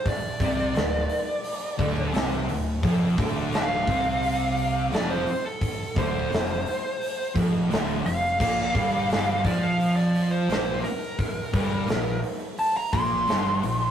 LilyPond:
<<
  \new Staff \with { instrumentName = "Lead electric guitar" } { \time 4/4 \key f \major \tempo 4 = 86 d''2. r4 | r4 f''2 d''16 c''8 a'16~ | a'8 c''2 r4 f''8~ | f''4. d''16 f''8 d''8 c''8. bes'8~ |
bes'4. r8 a''16 bes''16 c'''4. | }
  \new Staff \with { instrumentName = "Distorted electric guitar" } { \clef bass \time 4/4 \key f \major r8 <c c'>8 d,8 r4 <d, d>8 <c c'>8 d,8 | <f, f>8 <d, d>4 <c c'>4. <f, f>8 r8 | r8 <d, d>8 f,8 r4 <f, f>8 <d, d>8 f,8 | <bes, bes>8 <g, g>4 <f f'>4. <bes, bes>8 r8 |
r8 <g, g>8 bes,8 r4 <bes, bes>8 <g, g>8 bes,8 | }
  \new Staff \with { instrumentName = "Distorted electric guitar" } { \clef bass \time 4/4 \key f \major r8 <c c'>8 d,8 r4 <d, d>8 <c c'>8 d,8 | <f, f>8 <d, d>4 <c c'>4. <f, f>8 r8 | r8 <d, d>8 f,8 r4 <f, f>8 <d, d>8 f,8 | <bes, bes>8 <g, g>4 <f f'>4. <bes, bes>8 r8 |
r8 <g, g>8 bes,8 r4 <bes, bes>8 <g, g>8 bes,8 | }
  \new Staff \with { instrumentName = "Overdriven electric guitar" } { \clef bass \time 4/4 \key f \major r8 <c c'>8 d,8 r4 <d, d>8 <c c'>8 d,8 | <f, f>8 <d, d>4 <c c'>4. <f, f>8 r8 | r8 <d, d>8 f,8 r4 <f, f>8 <d, d>8 f,8 | <bes, bes>8 <g, g>4 <f f'>4. <bes, bes>8 r8 |
r8 <g, g>8 bes,8 r4 <bes, bes>8 <g, g>8 bes,8 | }
  \new Staff \with { instrumentName = "Fingered electric bass" } { \clef bass \time 4/4 \key f \major r8 c,8 d,,8 r4 d,,8 c,8 d,,8 | f,,8 d,,4 c,4. f,,8 r8 | r8 d,,8 f,,8 r4 f,,8 d,,8 f,,8 | bes,,8 g,,4 f,4. bes,,8 r8 |
r8 g,,8 bes,,8 r4 bes,,8 g,,8 bes,,8 | }
  \new DrumStaff \with { instrumentName = "Drums" } \drummode { \time 4/4 <hho bd>8 <hho bd>8 <hho sn>8 hho8 hho8 <hho bd>8 <hho sn>8 hho8 | <hho bd>8 <hho bd>8 <hho sn>8 <hho bd>8 hho8 hho8 <hho sn>8 hho8 | <hho bd>8 <hho bd>8 <hho sn>8 hho8 hho8 <hho bd>8 <hho sn>8 hho8 | <cymc bd>8 <hho bd>8 <hho sn>8 <hho bd>8 hho8 hho8 <hho sn>8 hho8 |
<hho bd>8 <hho bd>8 <hho sn>8 hho8 hho8 <hho bd>8 <hho sn>8 hho8 | }
>>